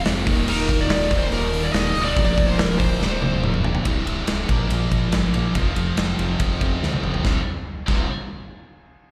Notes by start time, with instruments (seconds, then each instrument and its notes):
Already playing: overdriven electric guitar F2 C3 F3, distorted electric guitar F2 C3 F3
0.05 fm bass F1, overdriven electric guitar F2 C3 F3, snare, open hi-hat
0.26 fm bass D#1, distorted electric guitar D#2 A#2 D#3, overdriven electric guitar D#2 A#2 D#3, kick, open hi-hat
0.47 fm bass D#1, overdriven electric guitar D#2 A#2 D#3, lead electric guitar A#4, crash
0.69 fm bass D#1, overdriven electric guitar D#2 A#2 D#3, kick, open hi-hat
0.81 lead electric guitar D5
0.89 fm bass D#1, overdriven electric guitar D#2 A#2 D#3, snare, open hi-hat
1.10 fm bass D#1, overdriven electric guitar D#2 A#2 D#3, kick, open hi-hat
1.18 lead electric guitar C5
1.31 fm bass D#1, overdriven electric guitar D#2 A#2 D#3, lead electric guitar A#4, open hi-hat
1.53 overdriven electric guitar D#2 A#2 D#3, open hi-hat
1.63 lead electric guitar D5
1.72 fm bass D#1, overdriven electric guitar D#2 A#2 D#3, lead electric guitar D#5, snare, open hi-hat
1.94 fm bass C#1, overdriven electric guitar D#2 A#2 D#3, open hi-hat
2.05 lead electric guitar D5
2.16 fm bass D1, distorted electric guitar A#2 F3 A#3, overdriven electric guitar A#2 F3 A#3, kick, open hi-hat
2.25 lead electric guitar D5
2.37 fm bass D1, overdriven electric guitar A#2 F3 A#3, kick, open hi-hat
2.46 lead electric guitar C5
2.57 fm bass D1, overdriven electric guitar A#2 F3 A#3, lead electric guitar A#4, snare, open hi-hat
2.79 fm bass D1, overdriven electric guitar A#2 F3 A#3, lead electric guitar C5, kick, open hi-hat
2.99 fm bass D1, overdriven electric guitar A#2 F3 A#3, snare
3.21 fm bass C1, overdriven electric guitar A#2 F3 A#3, high tom
3.42 fm bass D1, overdriven electric guitar A#2 F3 A#3, mid tom
3.54 mid tom
3.64 overdriven electric guitar A#2 F3 A#3, floor tom
3.75 floor tom
3.85 fm bass C1, distorted electric guitar C2 G2 C3, kick, ride
4.05 fm bass C1, ride
4.27 fm bass C1, snare, ride
4.49 fm bass A#1, distorted electric guitar A#2 F3 A#3, kick, ride
4.70 fm bass A#1, ride
4.92 fm bass A#1, kick, ride
5.12 fm bass G1, snare, ride
5.33 fm bass A#1, distorted electric guitar A#2 F3 A#3, ride
5.54 fm bass F1, distorted electric guitar F2 C3 F3, kick, ride
5.76 fm bass F1, ride
5.97 fm bass F1, snare, ride
6.18 fm bass F1, ride
6.39 fm bass F1, distorted electric guitar F2 C3 F3, kick, ride
6.61 fm bass F1, kick, ride
6.82 fm bass D2, snare
6.93 high tom
7.03 fm bass F1, mid tom
7.14 floor tom
7.24 fm bass C1, distorted electric guitar C2 G2 C3, kick, snare
7.87 fm bass C1, distorted electric guitar C2 G2 C3, kick, crash